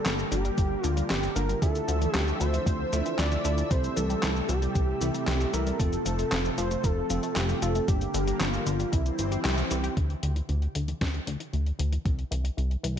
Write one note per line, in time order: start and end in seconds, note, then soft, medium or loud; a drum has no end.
0.00 3.67 D3 medium
0.00 1.60 G3 medium
0.00 0.81 A#3 medium
0.00 1.60 A#3 medium
0.00 0.81 D4 medium
0.00 0.81 G4 medium
0.00 0.28 A4 loud
0.06 0.24 G1 loud
0.06 0.18 D3 medium
0.06 snare loud
0.06 clap medium
0.06 closed hi-hat medium
0.06 cabasa soft
0.19 cabasa soft
0.32 0.50 G1 loud
0.32 0.40 D3 loud
0.32 0.86 G4 loud
0.32 closed hi-hat medium
0.32 cabasa medium
0.45 0.53 G3 medium
0.45 closed hi-hat medium
0.45 cabasa soft
0.58 0.76 G1 medium
0.58 0.70 D3 medium
0.58 kick loud
0.58 closed hi-hat medium
0.58 cabasa soft
0.83 1.02 D2 medium
0.83 0.92 D3 loud
0.83 1.06 F4 loud
0.83 closed hi-hat medium
0.83 cabasa medium
0.97 1.05 G3 medium
0.97 closed hi-hat medium
0.97 cabasa soft
1.10 1.29 G1 medium
1.10 1.22 D3 medium
1.10 1.34 G4 loud
1.10 snare loud
1.10 clap medium
1.10 closed hi-hat medium
1.10 cabasa soft
1.23 snare soft
1.23 closed hi-hat soft
1.23 cabasa soft
1.36 1.55 G1 loud
1.36 1.45 D3 loud
1.36 1.59 A#3 medium
1.36 1.59 D4 medium
1.36 1.59 F4 medium
1.36 1.60 A#4 loud
1.36 closed hi-hat medium
1.36 cabasa medium
1.49 1.58 G3 medium
1.49 closed hi-hat medium
1.49 cabasa soft
1.62 1.81 D2 medium
1.62 1.74 D3 medium
1.62 3.69 F3 medium
1.62 3.69 A3 medium
1.62 2.90 D4 medium
1.62 2.90 E4 medium
1.62 2.90 F4 medium
1.62 2.16 A4 loud
1.62 2.90 A4 medium
1.62 5.76 E5 medium
1.62 2.90 E5 medium
1.62 kick loud
1.62 closed hi-hat medium
1.62 cabasa soft
1.75 closed hi-hat soft
1.75 cabasa soft
1.88 2.07 D2 medium
1.88 1.97 D3 loud
1.88 closed hi-hat medium
1.88 cabasa medium
2.01 2.10 E3 medium
2.01 closed hi-hat soft
2.01 cabasa soft
2.14 2.33 D2 medium
2.14 2.27 D3 medium
2.14 2.42 G4 loud
2.14 snare loud
2.14 clap medium
2.14 closed hi-hat medium
2.14 cabasa soft
2.28 cabasa soft
2.40 2.59 D2 loud
2.40 2.49 D3 loud
2.40 3.18 C5 loud
2.40 closed hi-hat medium
2.40 cabasa medium
2.53 2.62 E3 medium
2.53 closed hi-hat soft
2.53 cabasa soft
2.66 2.85 D2 medium
2.66 2.79 D3 medium
2.66 kick loud
2.66 closed hi-hat medium
2.66 cabasa soft
2.93 3.02 D2 medium
2.93 3.01 D3 loud
2.93 3.42 D4 medium
2.93 3.42 E4 medium
2.93 3.42 F4 medium
2.93 3.42 A4 medium
2.93 3.42 E5 loud
2.93 closed hi-hat medium
2.93 cabasa medium
3.06 3.14 E3 medium
3.06 closed hi-hat medium
3.06 cabasa soft
3.19 3.37 D2 medium
3.19 3.31 D3 medium
3.19 3.43 D5 loud
3.19 snare loud
3.19 clap medium
3.19 closed hi-hat medium
3.19 cabasa soft
3.32 snare soft
3.32 closed hi-hat soft
3.32 cabasa soft
3.45 3.63 D2 medium
3.45 3.53 D3 loud
3.45 3.68 D4 medium
3.45 3.68 E4 medium
3.45 3.68 F4 medium
3.45 3.68 A4 medium
3.45 3.72 D5 medium
3.45 3.68 E5 loud
3.45 closed hi-hat medium
3.45 cabasa medium
3.57 3.66 E3 medium
3.57 closed hi-hat soft
3.57 cabasa soft
3.70 3.89 C2 loud
3.70 7.84 C3 medium
3.70 3.83 E3 medium
3.70 5.78 G3 medium
3.70 7.84 A3 medium
3.70 4.98 C4 medium
3.70 4.98 E4 medium
3.70 4.98 G4 medium
3.70 4.98 A4 medium
3.70 3.98 C5 loud
3.70 4.98 E5 medium
3.70 kick loud
3.70 closed hi-hat medium
3.70 cabasa soft
3.84 closed hi-hat soft
3.84 cabasa soft
3.97 4.16 C2 medium
3.97 4.05 E3 loud
3.97 4.48 A4 loud
3.97 closed hi-hat medium
3.97 cabasa medium
4.10 4.18 G3 medium
4.10 closed hi-hat soft
4.10 cabasa soft
4.23 4.42 C2 loud
4.23 4.35 E3 medium
4.23 snare loud
4.23 clap loud
4.23 closed hi-hat medium
4.23 cabasa soft
4.36 cabasa soft
4.49 4.68 C2 medium
4.49 4.58 E3 loud
4.49 5.23 G4 loud
4.49 closed hi-hat medium
4.49 cabasa medium
4.62 4.71 G3 medium
4.62 closed hi-hat medium
4.62 cabasa soft
4.75 4.94 C2 medium
4.75 4.88 E3 medium
4.75 kick loud
4.75 closed hi-hat medium
4.75 cabasa soft
5.01 5.11 C2 medium
5.01 5.10 E3 loud
5.01 5.51 C4 medium
5.01 5.51 E4 medium
5.01 5.51 G4 medium
5.01 5.51 A4 medium
5.01 5.50 E5 medium
5.01 closed hi-hat medium
5.01 cabasa medium
5.14 5.23 G3 medium
5.14 closed hi-hat medium
5.14 cabasa soft
5.27 5.46 C2 loud
5.27 5.40 E3 medium
5.27 5.55 G4 loud
5.27 snare loud
5.27 clap medium
5.27 closed hi-hat medium
5.27 cabasa soft
5.41 snare soft
5.41 closed hi-hat soft
5.41 cabasa soft
5.53 5.72 C2 medium
5.53 5.62 E3 loud
5.53 5.77 C4 medium
5.53 5.77 E4 medium
5.53 5.77 G4 medium
5.53 5.77 A4 medium
5.53 5.81 A#4 medium
5.53 5.77 E5 loud
5.53 closed hi-hat medium
5.53 cabasa medium
5.67 5.75 G3 medium
5.67 closed hi-hat medium
5.67 cabasa soft
5.79 5.98 F1 loud
5.79 5.92 F3 medium
5.79 7.87 F3 medium
5.79 7.07 C4 medium
5.79 7.07 F4 medium
5.79 6.57 A4 loud
5.79 7.07 A4 medium
5.79 kick loud
5.79 closed hi-hat medium
5.79 cabasa soft
5.93 closed hi-hat soft
5.93 cabasa soft
6.06 6.24 F1 medium
6.06 6.14 F3 loud
6.06 closed hi-hat medium
6.06 cabasa medium
6.19 6.27 A3 medium
6.19 closed hi-hat medium
6.19 cabasa soft
6.32 6.50 F1 medium
6.32 6.44 F3 medium
6.32 snare loud
6.32 clap medium
6.32 closed hi-hat medium
6.32 cabasa soft
6.45 cabasa soft
6.58 6.76 F1 medium
6.58 6.66 F3 loud
6.58 6.85 C5 loud
6.58 closed hi-hat medium
6.58 cabasa medium
6.71 6.80 A3 medium
6.71 closed hi-hat medium
6.71 cabasa soft
6.84 7.02 F1 medium
6.84 6.96 F3 medium
6.84 7.38 A4 loud
6.84 kick loud
6.84 closed hi-hat medium
6.84 cabasa soft
7.10 7.20 F1 medium
7.10 7.19 F3 loud
7.10 7.59 C4 medium
7.10 7.59 F4 medium
7.10 7.59 A4 loud
7.10 closed hi-hat medium
7.10 cabasa medium
7.23 7.32 A3 medium
7.23 closed hi-hat medium
7.23 cabasa soft
7.36 7.55 F1 medium
7.36 7.49 F3 medium
7.36 7.64 G4 medium
7.36 snare loud
7.36 clap loud
7.36 closed hi-hat medium
7.36 cabasa soft
7.49 snare soft
7.49 closed hi-hat soft
7.49 cabasa soft
7.62 7.81 F1 medium
7.62 7.71 F3 loud
7.62 7.85 C4 medium
7.62 7.85 F4 medium
7.62 7.88 A4 medium
7.62 7.85 A4 loud
7.62 closed hi-hat medium
7.62 cabasa medium
7.75 7.84 A3 medium
7.75 closed hi-hat soft
7.75 cabasa soft
7.88 8.07 G1 loud
7.88 8.01 D3 medium
7.88 8.92 D3 medium
7.88 9.95 G3 medium
7.88 8.92 A#3 medium
7.88 8.91 A#3 medium
7.88 8.91 D4 medium
7.88 8.42 G4 medium
7.88 8.91 G4 medium
7.88 kick loud
7.88 closed hi-hat medium
7.88 cabasa soft
8.01 closed hi-hat soft
8.01 cabasa soft
8.14 8.33 G1 medium
8.14 8.23 D3 loud
8.14 closed hi-hat medium
8.14 cabasa medium
8.27 8.36 G3 medium
8.27 closed hi-hat medium
8.27 cabasa soft
8.40 8.59 G1 loud
8.40 8.53 D3 medium
8.40 8.94 F4 medium
8.40 snare loud
8.40 clap loud
8.40 closed hi-hat medium
8.40 cabasa soft
8.54 closed hi-hat soft
8.54 cabasa soft
8.67 8.85 G1 medium
8.67 8.75 D3 loud
8.67 closed hi-hat medium
8.67 cabasa medium
8.80 8.88 G3 medium
8.80 closed hi-hat medium
8.80 cabasa soft
8.92 9.11 C2 medium
8.92 9.05 E3 medium
8.92 9.96 E3 medium
8.92 9.96 C4 medium
8.92 9.71 E4 medium
8.92 kick loud
8.92 closed hi-hat medium
8.92 cabasa soft
9.06 closed hi-hat soft
9.06 cabasa soft
9.18 9.37 G1 medium
9.18 9.31 E3 medium
9.18 closed hi-hat medium
9.18 cabasa medium
9.32 9.43 G4 medium
9.32 closed hi-hat medium
9.32 cabasa soft
9.44 9.63 C2 medium
9.44 9.57 G4 loud
9.44 snare loud
9.44 clap loud
9.44 closed hi-hat medium
9.44 cabasa soft
9.58 snare soft
9.58 closed hi-hat soft
9.58 cabasa soft
9.71 9.89 C2 loud
9.71 9.76 E3 medium
9.71 9.94 C4 medium
9.71 9.94 E4 medium
9.71 9.94 G4 medium
9.71 closed hi-hat medium
9.71 cabasa medium
9.84 9.92 G4 loud
9.84 closed hi-hat medium
9.84 cabasa soft
9.97 10.15 D2 medium
9.97 10.09 D3 medium
9.97 kick loud
9.97 closed hi-hat medium
10.10 closed hi-hat soft
10.23 10.42 D2 medium
10.23 10.32 D3 loud
10.23 closed hi-hat medium
10.36 10.45 E3 medium
10.36 closed hi-hat soft
10.49 10.68 D2 medium
10.49 10.61 D3 medium
10.49 closed hi-hat soft
10.62 closed hi-hat soft
10.75 10.94 D2 medium
10.75 10.84 D3 loud
10.75 closed hi-hat medium
10.88 10.97 E3 medium
10.88 closed hi-hat medium
11.01 11.20 D2 medium
11.01 11.14 D3 medium
11.01 kick loud
11.01 snare loud
11.01 closed hi-hat medium
11.14 closed hi-hat soft
11.27 11.37 D2 medium
11.27 11.36 D3 loud
11.27 closed hi-hat medium
11.40 11.49 E3 medium
11.40 closed hi-hat medium
11.53 11.72 D2 medium
11.53 11.66 D3 medium
11.53 closed hi-hat soft
11.66 closed hi-hat soft
11.79 11.98 D2 medium
11.79 11.88 D3 loud
11.79 closed hi-hat loud
11.92 12.01 E3 medium
11.92 closed hi-hat soft
12.05 12.24 C2 loud
12.05 12.18 E3 medium
12.05 kick loud
12.05 closed hi-hat medium
12.19 closed hi-hat soft
12.31 12.50 C2 medium
12.31 12.40 E3 loud
12.31 closed hi-hat loud
12.44 12.53 G3 medium
12.44 closed hi-hat soft
12.57 12.76 C2 loud
12.57 12.70 E3 medium
12.57 closed hi-hat medium
12.71 closed hi-hat soft
12.83 12.99 C2 medium
12.83 12.92 E3 loud
12.83 closed hi-hat medium
12.96 12.99 G3 medium